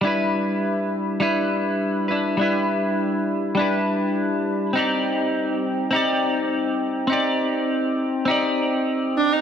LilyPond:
<<
  \new Staff \with { instrumentName = "Clean electric guitar" } { \time 4/4 \key g \major \tempo 4 = 102 <g d' e' b'>2 <g d' e' b'>4. <d' e' b'>8 | <g d' e' b'>2 <g d' e' b'>2 | <c' ees' g' d''>2 <c' ees' g' d''>2 | <c' ees' g' d''>2 <c' ees' g' d''>2 | }
  \new Staff \with { instrumentName = "Viola" } { \time 4/4 \key g \major r1 | r1 | r1 | r2. r8 d'16 ees'16 | }
>>